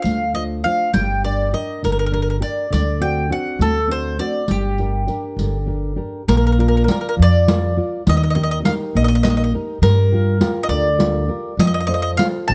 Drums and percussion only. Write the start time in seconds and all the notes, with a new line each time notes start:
0.05 riq
0.65 riq
0.94 riq
1.84 riq
2.44 riq
2.74 riq
3.61 riq
4.19 riq
4.48 riq
4.78 riq
5.08 riq
5.39 riq
6.29 riq
6.88 riq
7.48 riq
8.07 riq
8.65 riq
9.25 riq
9.83 riq
10.41 riq
11.00 riq
11.59 riq
12.19 riq
12.50 riq